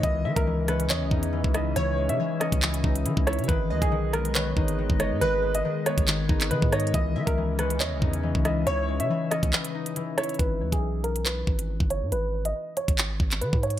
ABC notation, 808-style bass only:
X:1
M:4/4
L:1/16
Q:1/4=139
K:G#m
V:1 name="808-style bass" clef=bass
C,,2 E, C,,4- C,, E,, C,, E,,3 C,,3 | C,,3 C, z3 C,,3 C,,2 E, C,,2 C, | G,,,2 D,, B,,,6- B,,, G,,,3 =G,,,2 ^G,, | G,,,4 z3 G,,,3 G,,,2 D, G,,3 |
C,,2 E, C,,4- C,, E,, C,, E,,3 C,,3 | C,,3 C, z3 C,, z8 | G,,,2 D,, B,,,6- B,,, G,,,3 =G,,,2 ^G,, | G,,,4 z3 G,,,3 G,,,2 D, G,,3 |]